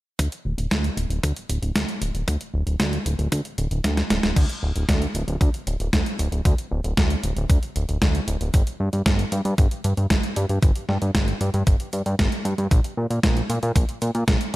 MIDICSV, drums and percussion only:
0, 0, Header, 1, 2, 480
1, 0, Start_track
1, 0, Tempo, 521739
1, 176, Time_signature, 4, 2, 24, 8
1, 13394, End_track
2, 0, Start_track
2, 0, Title_t, "Drums"
2, 176, Note_on_c, 9, 36, 111
2, 176, Note_on_c, 9, 42, 88
2, 268, Note_off_c, 9, 36, 0
2, 268, Note_off_c, 9, 42, 0
2, 296, Note_on_c, 9, 42, 38
2, 388, Note_off_c, 9, 42, 0
2, 536, Note_on_c, 9, 42, 39
2, 628, Note_off_c, 9, 42, 0
2, 656, Note_on_c, 9, 36, 111
2, 656, Note_on_c, 9, 38, 109
2, 656, Note_on_c, 9, 42, 88
2, 748, Note_off_c, 9, 36, 0
2, 748, Note_off_c, 9, 38, 0
2, 748, Note_off_c, 9, 42, 0
2, 776, Note_on_c, 9, 42, 39
2, 868, Note_off_c, 9, 42, 0
2, 896, Note_on_c, 9, 42, 66
2, 988, Note_off_c, 9, 42, 0
2, 1016, Note_on_c, 9, 42, 39
2, 1108, Note_off_c, 9, 42, 0
2, 1136, Note_on_c, 9, 36, 116
2, 1136, Note_on_c, 9, 42, 88
2, 1228, Note_off_c, 9, 36, 0
2, 1228, Note_off_c, 9, 42, 0
2, 1255, Note_on_c, 9, 42, 37
2, 1347, Note_off_c, 9, 42, 0
2, 1376, Note_on_c, 9, 42, 66
2, 1468, Note_off_c, 9, 42, 0
2, 1496, Note_on_c, 9, 42, 39
2, 1588, Note_off_c, 9, 42, 0
2, 1615, Note_on_c, 9, 38, 115
2, 1615, Note_on_c, 9, 42, 97
2, 1616, Note_on_c, 9, 36, 113
2, 1707, Note_off_c, 9, 38, 0
2, 1707, Note_off_c, 9, 42, 0
2, 1708, Note_off_c, 9, 36, 0
2, 1735, Note_on_c, 9, 42, 38
2, 1827, Note_off_c, 9, 42, 0
2, 1855, Note_on_c, 9, 42, 65
2, 1947, Note_off_c, 9, 42, 0
2, 1975, Note_on_c, 9, 42, 38
2, 2067, Note_off_c, 9, 42, 0
2, 2095, Note_on_c, 9, 36, 116
2, 2095, Note_on_c, 9, 42, 91
2, 2187, Note_off_c, 9, 36, 0
2, 2187, Note_off_c, 9, 42, 0
2, 2215, Note_on_c, 9, 42, 39
2, 2307, Note_off_c, 9, 42, 0
2, 2455, Note_on_c, 9, 42, 38
2, 2547, Note_off_c, 9, 42, 0
2, 2574, Note_on_c, 9, 38, 115
2, 2574, Note_on_c, 9, 42, 89
2, 2575, Note_on_c, 9, 36, 111
2, 2666, Note_off_c, 9, 38, 0
2, 2666, Note_off_c, 9, 42, 0
2, 2667, Note_off_c, 9, 36, 0
2, 2695, Note_on_c, 9, 42, 39
2, 2787, Note_off_c, 9, 42, 0
2, 2815, Note_on_c, 9, 42, 66
2, 2907, Note_off_c, 9, 42, 0
2, 2935, Note_on_c, 9, 42, 37
2, 3027, Note_off_c, 9, 42, 0
2, 3054, Note_on_c, 9, 42, 85
2, 3055, Note_on_c, 9, 36, 120
2, 3146, Note_off_c, 9, 42, 0
2, 3147, Note_off_c, 9, 36, 0
2, 3175, Note_on_c, 9, 42, 36
2, 3267, Note_off_c, 9, 42, 0
2, 3294, Note_on_c, 9, 42, 62
2, 3386, Note_off_c, 9, 42, 0
2, 3414, Note_on_c, 9, 42, 39
2, 3506, Note_off_c, 9, 42, 0
2, 3535, Note_on_c, 9, 36, 117
2, 3535, Note_on_c, 9, 38, 58
2, 3535, Note_on_c, 9, 42, 93
2, 3627, Note_off_c, 9, 36, 0
2, 3627, Note_off_c, 9, 38, 0
2, 3627, Note_off_c, 9, 42, 0
2, 3656, Note_on_c, 9, 38, 60
2, 3656, Note_on_c, 9, 42, 39
2, 3748, Note_off_c, 9, 38, 0
2, 3748, Note_off_c, 9, 42, 0
2, 3775, Note_on_c, 9, 38, 81
2, 3775, Note_on_c, 9, 42, 62
2, 3867, Note_off_c, 9, 38, 0
2, 3867, Note_off_c, 9, 42, 0
2, 3895, Note_on_c, 9, 38, 82
2, 3895, Note_on_c, 9, 42, 39
2, 3987, Note_off_c, 9, 38, 0
2, 3987, Note_off_c, 9, 42, 0
2, 4015, Note_on_c, 9, 36, 112
2, 4015, Note_on_c, 9, 42, 91
2, 4015, Note_on_c, 9, 49, 90
2, 4107, Note_off_c, 9, 36, 0
2, 4107, Note_off_c, 9, 42, 0
2, 4107, Note_off_c, 9, 49, 0
2, 4135, Note_on_c, 9, 42, 41
2, 4227, Note_off_c, 9, 42, 0
2, 4375, Note_on_c, 9, 42, 42
2, 4467, Note_off_c, 9, 42, 0
2, 4495, Note_on_c, 9, 36, 117
2, 4496, Note_on_c, 9, 38, 117
2, 4496, Note_on_c, 9, 42, 94
2, 4587, Note_off_c, 9, 36, 0
2, 4588, Note_off_c, 9, 38, 0
2, 4588, Note_off_c, 9, 42, 0
2, 4617, Note_on_c, 9, 42, 41
2, 4709, Note_off_c, 9, 42, 0
2, 4737, Note_on_c, 9, 42, 67
2, 4829, Note_off_c, 9, 42, 0
2, 4857, Note_on_c, 9, 42, 42
2, 4949, Note_off_c, 9, 42, 0
2, 4976, Note_on_c, 9, 36, 125
2, 4977, Note_on_c, 9, 42, 90
2, 5068, Note_off_c, 9, 36, 0
2, 5069, Note_off_c, 9, 42, 0
2, 5098, Note_on_c, 9, 42, 39
2, 5190, Note_off_c, 9, 42, 0
2, 5217, Note_on_c, 9, 42, 68
2, 5309, Note_off_c, 9, 42, 0
2, 5337, Note_on_c, 9, 42, 38
2, 5429, Note_off_c, 9, 42, 0
2, 5456, Note_on_c, 9, 36, 114
2, 5457, Note_on_c, 9, 38, 116
2, 5457, Note_on_c, 9, 42, 97
2, 5548, Note_off_c, 9, 36, 0
2, 5549, Note_off_c, 9, 38, 0
2, 5549, Note_off_c, 9, 42, 0
2, 5578, Note_on_c, 9, 42, 40
2, 5670, Note_off_c, 9, 42, 0
2, 5697, Note_on_c, 9, 42, 69
2, 5789, Note_off_c, 9, 42, 0
2, 5817, Note_on_c, 9, 42, 41
2, 5909, Note_off_c, 9, 42, 0
2, 5936, Note_on_c, 9, 36, 117
2, 5937, Note_on_c, 9, 42, 90
2, 6028, Note_off_c, 9, 36, 0
2, 6029, Note_off_c, 9, 42, 0
2, 6057, Note_on_c, 9, 42, 41
2, 6149, Note_off_c, 9, 42, 0
2, 6297, Note_on_c, 9, 42, 39
2, 6389, Note_off_c, 9, 42, 0
2, 6416, Note_on_c, 9, 36, 117
2, 6416, Note_on_c, 9, 38, 124
2, 6416, Note_on_c, 9, 42, 88
2, 6508, Note_off_c, 9, 36, 0
2, 6508, Note_off_c, 9, 38, 0
2, 6508, Note_off_c, 9, 42, 0
2, 6535, Note_on_c, 9, 42, 40
2, 6627, Note_off_c, 9, 42, 0
2, 6656, Note_on_c, 9, 42, 65
2, 6748, Note_off_c, 9, 42, 0
2, 6776, Note_on_c, 9, 42, 39
2, 6868, Note_off_c, 9, 42, 0
2, 6896, Note_on_c, 9, 36, 123
2, 6896, Note_on_c, 9, 42, 87
2, 6988, Note_off_c, 9, 36, 0
2, 6988, Note_off_c, 9, 42, 0
2, 7016, Note_on_c, 9, 42, 37
2, 7108, Note_off_c, 9, 42, 0
2, 7137, Note_on_c, 9, 42, 64
2, 7229, Note_off_c, 9, 42, 0
2, 7256, Note_on_c, 9, 42, 39
2, 7348, Note_off_c, 9, 42, 0
2, 7376, Note_on_c, 9, 36, 116
2, 7376, Note_on_c, 9, 38, 118
2, 7376, Note_on_c, 9, 42, 94
2, 7468, Note_off_c, 9, 36, 0
2, 7468, Note_off_c, 9, 38, 0
2, 7468, Note_off_c, 9, 42, 0
2, 7496, Note_on_c, 9, 42, 39
2, 7588, Note_off_c, 9, 42, 0
2, 7615, Note_on_c, 9, 42, 65
2, 7707, Note_off_c, 9, 42, 0
2, 7735, Note_on_c, 9, 42, 39
2, 7827, Note_off_c, 9, 42, 0
2, 7855, Note_on_c, 9, 42, 88
2, 7856, Note_on_c, 9, 36, 125
2, 7947, Note_off_c, 9, 42, 0
2, 7948, Note_off_c, 9, 36, 0
2, 7976, Note_on_c, 9, 42, 38
2, 8068, Note_off_c, 9, 42, 0
2, 8215, Note_on_c, 9, 42, 39
2, 8307, Note_off_c, 9, 42, 0
2, 8334, Note_on_c, 9, 38, 117
2, 8334, Note_on_c, 9, 42, 88
2, 8336, Note_on_c, 9, 36, 114
2, 8426, Note_off_c, 9, 38, 0
2, 8426, Note_off_c, 9, 42, 0
2, 8428, Note_off_c, 9, 36, 0
2, 8455, Note_on_c, 9, 42, 39
2, 8547, Note_off_c, 9, 42, 0
2, 8574, Note_on_c, 9, 42, 65
2, 8666, Note_off_c, 9, 42, 0
2, 8695, Note_on_c, 9, 42, 38
2, 8787, Note_off_c, 9, 42, 0
2, 8815, Note_on_c, 9, 42, 86
2, 8816, Note_on_c, 9, 36, 127
2, 8907, Note_off_c, 9, 42, 0
2, 8908, Note_off_c, 9, 36, 0
2, 8936, Note_on_c, 9, 42, 38
2, 9028, Note_off_c, 9, 42, 0
2, 9056, Note_on_c, 9, 42, 59
2, 9148, Note_off_c, 9, 42, 0
2, 9176, Note_on_c, 9, 42, 36
2, 9268, Note_off_c, 9, 42, 0
2, 9294, Note_on_c, 9, 38, 124
2, 9294, Note_on_c, 9, 42, 90
2, 9296, Note_on_c, 9, 36, 122
2, 9386, Note_off_c, 9, 38, 0
2, 9386, Note_off_c, 9, 42, 0
2, 9388, Note_off_c, 9, 36, 0
2, 9415, Note_on_c, 9, 42, 38
2, 9507, Note_off_c, 9, 42, 0
2, 9535, Note_on_c, 9, 42, 60
2, 9627, Note_off_c, 9, 42, 0
2, 9655, Note_on_c, 9, 42, 38
2, 9747, Note_off_c, 9, 42, 0
2, 9775, Note_on_c, 9, 36, 124
2, 9775, Note_on_c, 9, 42, 87
2, 9867, Note_off_c, 9, 36, 0
2, 9867, Note_off_c, 9, 42, 0
2, 9895, Note_on_c, 9, 42, 39
2, 9987, Note_off_c, 9, 42, 0
2, 10015, Note_on_c, 9, 38, 37
2, 10107, Note_off_c, 9, 38, 0
2, 10135, Note_on_c, 9, 42, 37
2, 10227, Note_off_c, 9, 42, 0
2, 10255, Note_on_c, 9, 36, 116
2, 10255, Note_on_c, 9, 38, 121
2, 10255, Note_on_c, 9, 42, 84
2, 10347, Note_off_c, 9, 36, 0
2, 10347, Note_off_c, 9, 38, 0
2, 10347, Note_off_c, 9, 42, 0
2, 10376, Note_on_c, 9, 42, 37
2, 10468, Note_off_c, 9, 42, 0
2, 10495, Note_on_c, 9, 42, 62
2, 10587, Note_off_c, 9, 42, 0
2, 10615, Note_on_c, 9, 42, 37
2, 10707, Note_off_c, 9, 42, 0
2, 10735, Note_on_c, 9, 36, 125
2, 10735, Note_on_c, 9, 42, 82
2, 10827, Note_off_c, 9, 36, 0
2, 10827, Note_off_c, 9, 42, 0
2, 10855, Note_on_c, 9, 42, 36
2, 10947, Note_off_c, 9, 42, 0
2, 10974, Note_on_c, 9, 42, 62
2, 11066, Note_off_c, 9, 42, 0
2, 11095, Note_on_c, 9, 42, 36
2, 11187, Note_off_c, 9, 42, 0
2, 11215, Note_on_c, 9, 36, 122
2, 11216, Note_on_c, 9, 38, 127
2, 11216, Note_on_c, 9, 42, 86
2, 11307, Note_off_c, 9, 36, 0
2, 11308, Note_off_c, 9, 38, 0
2, 11308, Note_off_c, 9, 42, 0
2, 11336, Note_on_c, 9, 42, 37
2, 11428, Note_off_c, 9, 42, 0
2, 11456, Note_on_c, 9, 42, 64
2, 11548, Note_off_c, 9, 42, 0
2, 11576, Note_on_c, 9, 42, 36
2, 11668, Note_off_c, 9, 42, 0
2, 11695, Note_on_c, 9, 36, 116
2, 11696, Note_on_c, 9, 42, 88
2, 11787, Note_off_c, 9, 36, 0
2, 11788, Note_off_c, 9, 42, 0
2, 11816, Note_on_c, 9, 42, 40
2, 11908, Note_off_c, 9, 42, 0
2, 12057, Note_on_c, 9, 42, 38
2, 12149, Note_off_c, 9, 42, 0
2, 12175, Note_on_c, 9, 36, 114
2, 12177, Note_on_c, 9, 38, 117
2, 12177, Note_on_c, 9, 42, 83
2, 12267, Note_off_c, 9, 36, 0
2, 12269, Note_off_c, 9, 38, 0
2, 12269, Note_off_c, 9, 42, 0
2, 12297, Note_on_c, 9, 42, 37
2, 12389, Note_off_c, 9, 42, 0
2, 12417, Note_on_c, 9, 42, 63
2, 12509, Note_off_c, 9, 42, 0
2, 12536, Note_on_c, 9, 42, 38
2, 12628, Note_off_c, 9, 42, 0
2, 12655, Note_on_c, 9, 36, 120
2, 12657, Note_on_c, 9, 42, 82
2, 12747, Note_off_c, 9, 36, 0
2, 12749, Note_off_c, 9, 42, 0
2, 12776, Note_on_c, 9, 42, 36
2, 12868, Note_off_c, 9, 42, 0
2, 12896, Note_on_c, 9, 42, 62
2, 12988, Note_off_c, 9, 42, 0
2, 13015, Note_on_c, 9, 42, 36
2, 13107, Note_off_c, 9, 42, 0
2, 13135, Note_on_c, 9, 36, 117
2, 13135, Note_on_c, 9, 38, 119
2, 13135, Note_on_c, 9, 42, 88
2, 13227, Note_off_c, 9, 36, 0
2, 13227, Note_off_c, 9, 38, 0
2, 13227, Note_off_c, 9, 42, 0
2, 13255, Note_on_c, 9, 42, 38
2, 13347, Note_off_c, 9, 42, 0
2, 13394, End_track
0, 0, End_of_file